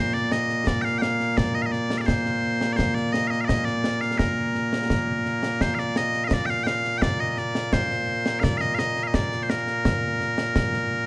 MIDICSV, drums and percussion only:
0, 0, Header, 1, 2, 480
1, 0, Start_track
1, 0, Key_signature, -2, "major"
1, 0, Tempo, 705882
1, 936, Time_signature, 2, 2, 24, 8
1, 7524, End_track
2, 0, Start_track
2, 0, Title_t, "Drums"
2, 95, Note_on_c, 9, 38, 24
2, 163, Note_off_c, 9, 38, 0
2, 215, Note_on_c, 9, 38, 69
2, 283, Note_off_c, 9, 38, 0
2, 336, Note_on_c, 9, 38, 26
2, 404, Note_off_c, 9, 38, 0
2, 456, Note_on_c, 9, 35, 56
2, 456, Note_on_c, 9, 38, 95
2, 524, Note_off_c, 9, 35, 0
2, 524, Note_off_c, 9, 38, 0
2, 576, Note_on_c, 9, 38, 30
2, 644, Note_off_c, 9, 38, 0
2, 695, Note_on_c, 9, 38, 74
2, 763, Note_off_c, 9, 38, 0
2, 817, Note_on_c, 9, 38, 27
2, 885, Note_off_c, 9, 38, 0
2, 936, Note_on_c, 9, 35, 59
2, 936, Note_on_c, 9, 38, 89
2, 1004, Note_off_c, 9, 35, 0
2, 1004, Note_off_c, 9, 38, 0
2, 1176, Note_on_c, 9, 38, 26
2, 1244, Note_off_c, 9, 38, 0
2, 1295, Note_on_c, 9, 38, 66
2, 1363, Note_off_c, 9, 38, 0
2, 1415, Note_on_c, 9, 35, 55
2, 1415, Note_on_c, 9, 38, 97
2, 1483, Note_off_c, 9, 35, 0
2, 1483, Note_off_c, 9, 38, 0
2, 1535, Note_on_c, 9, 38, 31
2, 1603, Note_off_c, 9, 38, 0
2, 1776, Note_on_c, 9, 38, 68
2, 1844, Note_off_c, 9, 38, 0
2, 1895, Note_on_c, 9, 35, 52
2, 1895, Note_on_c, 9, 38, 86
2, 1963, Note_off_c, 9, 35, 0
2, 1963, Note_off_c, 9, 38, 0
2, 2016, Note_on_c, 9, 38, 25
2, 2084, Note_off_c, 9, 38, 0
2, 2136, Note_on_c, 9, 38, 69
2, 2204, Note_off_c, 9, 38, 0
2, 2256, Note_on_c, 9, 38, 26
2, 2324, Note_off_c, 9, 38, 0
2, 2375, Note_on_c, 9, 35, 55
2, 2375, Note_on_c, 9, 38, 101
2, 2443, Note_off_c, 9, 35, 0
2, 2443, Note_off_c, 9, 38, 0
2, 2494, Note_on_c, 9, 38, 27
2, 2562, Note_off_c, 9, 38, 0
2, 2612, Note_on_c, 9, 38, 71
2, 2680, Note_off_c, 9, 38, 0
2, 2733, Note_on_c, 9, 38, 25
2, 2801, Note_off_c, 9, 38, 0
2, 2852, Note_on_c, 9, 35, 54
2, 2852, Note_on_c, 9, 38, 91
2, 2920, Note_off_c, 9, 35, 0
2, 2920, Note_off_c, 9, 38, 0
2, 3094, Note_on_c, 9, 38, 27
2, 3162, Note_off_c, 9, 38, 0
2, 3215, Note_on_c, 9, 38, 69
2, 3283, Note_off_c, 9, 38, 0
2, 3333, Note_on_c, 9, 35, 55
2, 3333, Note_on_c, 9, 38, 91
2, 3401, Note_off_c, 9, 35, 0
2, 3401, Note_off_c, 9, 38, 0
2, 3574, Note_on_c, 9, 38, 28
2, 3642, Note_off_c, 9, 38, 0
2, 3692, Note_on_c, 9, 38, 74
2, 3760, Note_off_c, 9, 38, 0
2, 3814, Note_on_c, 9, 35, 54
2, 3814, Note_on_c, 9, 38, 85
2, 3882, Note_off_c, 9, 35, 0
2, 3882, Note_off_c, 9, 38, 0
2, 3934, Note_on_c, 9, 38, 28
2, 4002, Note_off_c, 9, 38, 0
2, 4052, Note_on_c, 9, 38, 78
2, 4120, Note_off_c, 9, 38, 0
2, 4173, Note_on_c, 9, 38, 27
2, 4241, Note_off_c, 9, 38, 0
2, 4291, Note_on_c, 9, 35, 57
2, 4291, Note_on_c, 9, 38, 105
2, 4359, Note_off_c, 9, 35, 0
2, 4359, Note_off_c, 9, 38, 0
2, 4414, Note_on_c, 9, 38, 30
2, 4482, Note_off_c, 9, 38, 0
2, 4534, Note_on_c, 9, 38, 78
2, 4602, Note_off_c, 9, 38, 0
2, 4655, Note_on_c, 9, 38, 30
2, 4723, Note_off_c, 9, 38, 0
2, 4774, Note_on_c, 9, 35, 60
2, 4774, Note_on_c, 9, 38, 93
2, 4842, Note_off_c, 9, 35, 0
2, 4842, Note_off_c, 9, 38, 0
2, 5013, Note_on_c, 9, 38, 29
2, 5081, Note_off_c, 9, 38, 0
2, 5135, Note_on_c, 9, 38, 76
2, 5203, Note_off_c, 9, 38, 0
2, 5254, Note_on_c, 9, 35, 59
2, 5254, Note_on_c, 9, 38, 109
2, 5322, Note_off_c, 9, 35, 0
2, 5322, Note_off_c, 9, 38, 0
2, 5376, Note_on_c, 9, 38, 34
2, 5444, Note_off_c, 9, 38, 0
2, 5615, Note_on_c, 9, 38, 78
2, 5683, Note_off_c, 9, 38, 0
2, 5736, Note_on_c, 9, 35, 63
2, 5736, Note_on_c, 9, 38, 96
2, 5804, Note_off_c, 9, 35, 0
2, 5804, Note_off_c, 9, 38, 0
2, 5855, Note_on_c, 9, 38, 30
2, 5923, Note_off_c, 9, 38, 0
2, 5975, Note_on_c, 9, 38, 77
2, 6043, Note_off_c, 9, 38, 0
2, 6095, Note_on_c, 9, 38, 30
2, 6163, Note_off_c, 9, 38, 0
2, 6215, Note_on_c, 9, 35, 58
2, 6215, Note_on_c, 9, 38, 105
2, 6283, Note_off_c, 9, 35, 0
2, 6283, Note_off_c, 9, 38, 0
2, 6337, Note_on_c, 9, 38, 32
2, 6405, Note_off_c, 9, 38, 0
2, 6457, Note_on_c, 9, 38, 83
2, 6525, Note_off_c, 9, 38, 0
2, 6577, Note_on_c, 9, 38, 30
2, 6645, Note_off_c, 9, 38, 0
2, 6699, Note_on_c, 9, 35, 61
2, 6699, Note_on_c, 9, 38, 102
2, 6767, Note_off_c, 9, 35, 0
2, 6767, Note_off_c, 9, 38, 0
2, 6941, Note_on_c, 9, 38, 31
2, 7009, Note_off_c, 9, 38, 0
2, 7058, Note_on_c, 9, 38, 83
2, 7126, Note_off_c, 9, 38, 0
2, 7178, Note_on_c, 9, 35, 65
2, 7178, Note_on_c, 9, 38, 106
2, 7246, Note_off_c, 9, 35, 0
2, 7246, Note_off_c, 9, 38, 0
2, 7301, Note_on_c, 9, 38, 35
2, 7369, Note_off_c, 9, 38, 0
2, 7524, End_track
0, 0, End_of_file